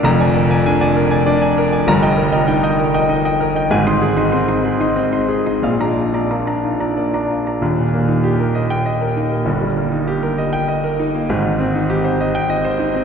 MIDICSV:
0, 0, Header, 1, 2, 480
1, 0, Start_track
1, 0, Key_signature, -3, "major"
1, 0, Tempo, 610376
1, 36, Time_signature, 3, 2, 24, 8
1, 3397, Tempo, 660793
1, 5797, Tempo, 607903
1, 10076, End_track
2, 0, Start_track
2, 0, Title_t, "Grand piano"
2, 0, Program_c, 0, 0
2, 0, Control_c, 0, 64, 127
2, 26, Note_on_c, 0, 29, 98
2, 36, Note_on_c, 0, 41, 107
2, 37, Note_on_c, 0, 82, 113
2, 52, Control_c, 0, 64, 0
2, 159, Note_on_c, 0, 74, 72
2, 160, Control_c, 0, 64, 127
2, 162, Note_on_c, 0, 80, 84
2, 227, Note_off_c, 0, 82, 0
2, 265, Note_off_c, 0, 74, 0
2, 267, Note_off_c, 0, 80, 0
2, 278, Note_on_c, 0, 70, 83
2, 397, Note_on_c, 0, 74, 79
2, 399, Note_on_c, 0, 80, 84
2, 468, Note_off_c, 0, 70, 0
2, 504, Note_off_c, 0, 74, 0
2, 505, Note_off_c, 0, 80, 0
2, 520, Note_on_c, 0, 62, 83
2, 520, Note_on_c, 0, 80, 96
2, 626, Note_off_c, 0, 80, 0
2, 637, Note_on_c, 0, 74, 84
2, 638, Note_on_c, 0, 80, 87
2, 709, Note_off_c, 0, 62, 0
2, 744, Note_off_c, 0, 74, 0
2, 744, Note_off_c, 0, 80, 0
2, 759, Note_on_c, 0, 70, 85
2, 872, Note_on_c, 0, 74, 81
2, 875, Note_on_c, 0, 80, 93
2, 949, Note_off_c, 0, 70, 0
2, 981, Note_off_c, 0, 74, 0
2, 983, Note_off_c, 0, 80, 0
2, 993, Note_on_c, 0, 62, 88
2, 994, Note_on_c, 0, 74, 88
2, 1101, Note_off_c, 0, 74, 0
2, 1113, Note_on_c, 0, 74, 79
2, 1116, Note_on_c, 0, 80, 88
2, 1186, Note_off_c, 0, 62, 0
2, 1222, Note_off_c, 0, 74, 0
2, 1223, Note_off_c, 0, 80, 0
2, 1239, Note_on_c, 0, 70, 90
2, 1354, Note_on_c, 0, 74, 74
2, 1357, Note_on_c, 0, 80, 81
2, 1429, Note_off_c, 0, 70, 0
2, 1438, Note_off_c, 0, 29, 0
2, 1442, Note_off_c, 0, 41, 0
2, 1462, Note_off_c, 0, 74, 0
2, 1463, Note_off_c, 0, 80, 0
2, 1469, Note_on_c, 0, 31, 97
2, 1477, Note_on_c, 0, 43, 100
2, 1477, Note_on_c, 0, 82, 113
2, 1490, Control_c, 0, 64, 0
2, 1591, Note_on_c, 0, 75, 79
2, 1594, Note_on_c, 0, 79, 90
2, 1605, Control_c, 0, 64, 127
2, 1667, Note_off_c, 0, 82, 0
2, 1700, Note_off_c, 0, 75, 0
2, 1702, Note_off_c, 0, 79, 0
2, 1704, Note_on_c, 0, 70, 83
2, 1824, Note_on_c, 0, 75, 83
2, 1829, Note_on_c, 0, 79, 85
2, 1902, Note_off_c, 0, 70, 0
2, 1936, Note_off_c, 0, 79, 0
2, 1937, Note_off_c, 0, 75, 0
2, 1948, Note_on_c, 0, 63, 85
2, 1948, Note_on_c, 0, 79, 92
2, 2063, Note_off_c, 0, 79, 0
2, 2067, Note_on_c, 0, 75, 80
2, 2075, Note_on_c, 0, 79, 90
2, 2145, Note_off_c, 0, 63, 0
2, 2180, Note_off_c, 0, 75, 0
2, 2184, Note_off_c, 0, 79, 0
2, 2191, Note_on_c, 0, 70, 81
2, 2315, Note_on_c, 0, 75, 82
2, 2315, Note_on_c, 0, 79, 89
2, 2387, Note_off_c, 0, 70, 0
2, 2420, Note_off_c, 0, 75, 0
2, 2425, Note_off_c, 0, 79, 0
2, 2432, Note_on_c, 0, 63, 81
2, 2432, Note_on_c, 0, 75, 82
2, 2544, Note_off_c, 0, 75, 0
2, 2556, Note_on_c, 0, 75, 76
2, 2559, Note_on_c, 0, 79, 85
2, 2627, Note_off_c, 0, 63, 0
2, 2665, Note_off_c, 0, 75, 0
2, 2666, Note_off_c, 0, 79, 0
2, 2676, Note_on_c, 0, 70, 85
2, 2796, Note_on_c, 0, 75, 71
2, 2802, Note_on_c, 0, 79, 84
2, 2867, Note_off_c, 0, 70, 0
2, 2882, Note_off_c, 0, 31, 0
2, 2885, Note_off_c, 0, 43, 0
2, 2903, Note_off_c, 0, 75, 0
2, 2906, Note_off_c, 0, 79, 0
2, 2910, Note_on_c, 0, 32, 87
2, 2917, Note_on_c, 0, 44, 99
2, 2919, Note_on_c, 0, 80, 89
2, 2929, Control_c, 0, 64, 0
2, 3042, Note_on_c, 0, 63, 75
2, 3042, Note_on_c, 0, 75, 71
2, 3042, Note_on_c, 0, 84, 101
2, 3049, Control_c, 0, 64, 127
2, 3107, Note_off_c, 0, 80, 0
2, 3146, Note_off_c, 0, 75, 0
2, 3146, Note_off_c, 0, 84, 0
2, 3159, Note_on_c, 0, 68, 79
2, 3230, Note_off_c, 0, 63, 0
2, 3276, Note_on_c, 0, 63, 76
2, 3276, Note_on_c, 0, 75, 69
2, 3280, Note_on_c, 0, 84, 78
2, 3351, Note_off_c, 0, 68, 0
2, 3386, Note_off_c, 0, 75, 0
2, 3387, Note_off_c, 0, 84, 0
2, 3398, Note_on_c, 0, 84, 85
2, 3400, Note_on_c, 0, 60, 76
2, 3467, Note_off_c, 0, 63, 0
2, 3505, Note_off_c, 0, 84, 0
2, 3515, Note_on_c, 0, 63, 71
2, 3516, Note_on_c, 0, 84, 74
2, 3517, Note_on_c, 0, 75, 64
2, 3583, Note_off_c, 0, 60, 0
2, 3618, Note_off_c, 0, 84, 0
2, 3619, Note_off_c, 0, 75, 0
2, 3631, Note_on_c, 0, 68, 70
2, 3698, Note_off_c, 0, 63, 0
2, 3746, Note_on_c, 0, 75, 66
2, 3748, Note_on_c, 0, 63, 71
2, 3751, Note_on_c, 0, 84, 74
2, 3815, Note_off_c, 0, 68, 0
2, 3850, Note_off_c, 0, 75, 0
2, 3853, Note_off_c, 0, 84, 0
2, 3859, Note_on_c, 0, 60, 70
2, 3863, Note_on_c, 0, 75, 71
2, 3933, Note_off_c, 0, 63, 0
2, 3967, Note_off_c, 0, 75, 0
2, 3978, Note_on_c, 0, 75, 64
2, 3979, Note_on_c, 0, 63, 66
2, 3983, Note_on_c, 0, 84, 70
2, 4050, Note_off_c, 0, 60, 0
2, 4087, Note_off_c, 0, 75, 0
2, 4090, Note_off_c, 0, 84, 0
2, 4098, Note_on_c, 0, 68, 71
2, 4173, Note_off_c, 0, 63, 0
2, 4225, Note_on_c, 0, 63, 60
2, 4226, Note_on_c, 0, 75, 60
2, 4228, Note_on_c, 0, 84, 66
2, 4295, Note_off_c, 0, 68, 0
2, 4314, Note_off_c, 0, 32, 0
2, 4317, Note_off_c, 0, 44, 0
2, 4336, Note_off_c, 0, 75, 0
2, 4337, Note_off_c, 0, 84, 0
2, 4342, Note_on_c, 0, 34, 72
2, 4348, Note_off_c, 0, 63, 0
2, 4349, Note_on_c, 0, 46, 78
2, 4350, Note_on_c, 0, 77, 76
2, 4362, Control_c, 0, 64, 0
2, 4474, Note_on_c, 0, 62, 61
2, 4474, Note_on_c, 0, 74, 59
2, 4477, Note_on_c, 0, 82, 86
2, 4490, Control_c, 0, 64, 127
2, 4547, Note_off_c, 0, 77, 0
2, 4584, Note_off_c, 0, 74, 0
2, 4585, Note_off_c, 0, 82, 0
2, 4597, Note_on_c, 0, 65, 67
2, 4670, Note_off_c, 0, 62, 0
2, 4717, Note_on_c, 0, 74, 60
2, 4718, Note_on_c, 0, 62, 60
2, 4721, Note_on_c, 0, 82, 63
2, 4791, Note_off_c, 0, 65, 0
2, 4826, Note_off_c, 0, 74, 0
2, 4829, Note_off_c, 0, 82, 0
2, 4841, Note_on_c, 0, 58, 62
2, 4842, Note_on_c, 0, 82, 65
2, 4911, Note_off_c, 0, 62, 0
2, 4950, Note_off_c, 0, 82, 0
2, 4958, Note_on_c, 0, 62, 59
2, 4959, Note_on_c, 0, 74, 57
2, 4961, Note_on_c, 0, 82, 63
2, 5033, Note_off_c, 0, 58, 0
2, 5068, Note_off_c, 0, 74, 0
2, 5069, Note_off_c, 0, 82, 0
2, 5080, Note_on_c, 0, 63, 50
2, 5082, Note_on_c, 0, 65, 60
2, 5152, Note_off_c, 0, 62, 0
2, 5200, Note_off_c, 0, 63, 0
2, 5200, Note_on_c, 0, 74, 57
2, 5202, Note_on_c, 0, 82, 63
2, 5203, Note_on_c, 0, 62, 60
2, 5274, Note_off_c, 0, 65, 0
2, 5309, Note_off_c, 0, 74, 0
2, 5309, Note_off_c, 0, 82, 0
2, 5319, Note_on_c, 0, 58, 54
2, 5322, Note_on_c, 0, 74, 64
2, 5394, Note_off_c, 0, 62, 0
2, 5434, Note_off_c, 0, 74, 0
2, 5442, Note_on_c, 0, 62, 61
2, 5445, Note_on_c, 0, 74, 57
2, 5446, Note_on_c, 0, 82, 64
2, 5513, Note_off_c, 0, 58, 0
2, 5552, Note_off_c, 0, 74, 0
2, 5553, Note_off_c, 0, 82, 0
2, 5561, Note_on_c, 0, 65, 61
2, 5635, Note_off_c, 0, 62, 0
2, 5681, Note_on_c, 0, 74, 54
2, 5682, Note_on_c, 0, 62, 56
2, 5685, Note_on_c, 0, 82, 58
2, 5750, Note_off_c, 0, 65, 0
2, 5766, Note_off_c, 0, 34, 0
2, 5769, Note_off_c, 0, 46, 0
2, 5785, Note_off_c, 0, 74, 0
2, 5787, Note_off_c, 0, 82, 0
2, 5789, Note_on_c, 0, 27, 78
2, 5793, Note_on_c, 0, 39, 83
2, 5797, Note_off_c, 0, 62, 0
2, 5813, Control_c, 0, 64, 0
2, 5920, Note_on_c, 0, 46, 63
2, 5965, Control_c, 0, 64, 127
2, 6042, Note_on_c, 0, 58, 67
2, 6117, Note_off_c, 0, 46, 0
2, 6160, Note_on_c, 0, 63, 66
2, 6239, Note_off_c, 0, 58, 0
2, 6282, Note_on_c, 0, 67, 73
2, 6357, Note_off_c, 0, 63, 0
2, 6406, Note_on_c, 0, 70, 69
2, 6478, Note_off_c, 0, 67, 0
2, 6527, Note_on_c, 0, 75, 72
2, 6599, Note_off_c, 0, 70, 0
2, 6650, Note_on_c, 0, 79, 93
2, 6720, Note_off_c, 0, 75, 0
2, 6771, Note_on_c, 0, 75, 75
2, 6841, Note_off_c, 0, 79, 0
2, 6892, Note_on_c, 0, 70, 69
2, 6963, Note_off_c, 0, 75, 0
2, 7014, Note_on_c, 0, 63, 68
2, 7083, Note_off_c, 0, 70, 0
2, 7134, Note_on_c, 0, 58, 62
2, 7204, Note_off_c, 0, 63, 0
2, 7214, Note_off_c, 0, 27, 0
2, 7216, Note_off_c, 0, 39, 0
2, 7241, Note_on_c, 0, 31, 77
2, 7247, Note_on_c, 0, 43, 83
2, 7251, Note_off_c, 0, 58, 0
2, 7265, Control_c, 0, 64, 0
2, 7370, Note_on_c, 0, 55, 62
2, 7385, Control_c, 0, 64, 127
2, 7488, Note_on_c, 0, 58, 68
2, 7560, Note_off_c, 0, 55, 0
2, 7609, Note_on_c, 0, 63, 66
2, 7679, Note_off_c, 0, 58, 0
2, 7733, Note_on_c, 0, 67, 77
2, 7800, Note_off_c, 0, 63, 0
2, 7853, Note_on_c, 0, 70, 74
2, 7923, Note_off_c, 0, 67, 0
2, 7975, Note_on_c, 0, 75, 74
2, 8044, Note_off_c, 0, 70, 0
2, 8090, Note_on_c, 0, 79, 98
2, 8165, Note_off_c, 0, 75, 0
2, 8213, Note_on_c, 0, 75, 76
2, 8282, Note_off_c, 0, 79, 0
2, 8335, Note_on_c, 0, 70, 77
2, 8404, Note_off_c, 0, 75, 0
2, 8459, Note_on_c, 0, 63, 75
2, 8524, Note_off_c, 0, 70, 0
2, 8580, Note_on_c, 0, 58, 70
2, 8646, Note_off_c, 0, 63, 0
2, 8654, Note_off_c, 0, 31, 0
2, 8657, Note_off_c, 0, 43, 0
2, 8693, Note_on_c, 0, 32, 89
2, 8695, Note_off_c, 0, 58, 0
2, 8699, Note_on_c, 0, 44, 89
2, 8703, Control_c, 0, 64, 0
2, 8818, Note_on_c, 0, 51, 69
2, 8826, Control_c, 0, 64, 127
2, 8933, Note_on_c, 0, 60, 73
2, 9005, Note_off_c, 0, 51, 0
2, 9056, Note_on_c, 0, 63, 77
2, 9123, Note_off_c, 0, 60, 0
2, 9172, Note_on_c, 0, 67, 85
2, 9244, Note_off_c, 0, 63, 0
2, 9289, Note_on_c, 0, 72, 76
2, 9361, Note_off_c, 0, 67, 0
2, 9414, Note_on_c, 0, 75, 76
2, 9479, Note_off_c, 0, 72, 0
2, 9528, Note_on_c, 0, 79, 106
2, 9600, Note_off_c, 0, 75, 0
2, 9645, Note_on_c, 0, 75, 91
2, 9717, Note_off_c, 0, 79, 0
2, 9763, Note_on_c, 0, 72, 85
2, 9834, Note_off_c, 0, 75, 0
2, 9878, Note_on_c, 0, 63, 82
2, 9953, Note_off_c, 0, 72, 0
2, 9997, Note_on_c, 0, 60, 72
2, 10070, Note_off_c, 0, 63, 0
2, 10076, Note_off_c, 0, 32, 0
2, 10076, Note_off_c, 0, 44, 0
2, 10076, Note_off_c, 0, 60, 0
2, 10076, End_track
0, 0, End_of_file